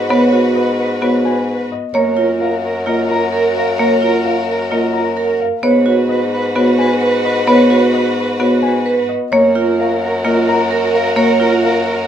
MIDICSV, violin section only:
0, 0, Header, 1, 2, 480
1, 0, Start_track
1, 0, Key_signature, 6, "major"
1, 0, Tempo, 461538
1, 98, Time_signature, 4, 2, 24, 8
1, 12556, End_track
2, 0, Start_track
2, 0, Title_t, "Violin section"
2, 0, Program_c, 0, 48
2, 0, Note_on_c, 0, 66, 55
2, 0, Note_on_c, 0, 71, 55
2, 1734, Note_off_c, 0, 71, 0
2, 1735, Note_off_c, 0, 66, 0
2, 2028, Note_on_c, 0, 70, 57
2, 2029, Note_on_c, 0, 66, 56
2, 5581, Note_off_c, 0, 70, 0
2, 5582, Note_off_c, 0, 66, 0
2, 5856, Note_on_c, 0, 71, 60
2, 5860, Note_on_c, 0, 66, 58
2, 9415, Note_off_c, 0, 71, 0
2, 9417, Note_off_c, 0, 66, 0
2, 9693, Note_on_c, 0, 66, 58
2, 9699, Note_on_c, 0, 70, 65
2, 12556, Note_off_c, 0, 66, 0
2, 12556, Note_off_c, 0, 70, 0
2, 12556, End_track
0, 0, End_of_file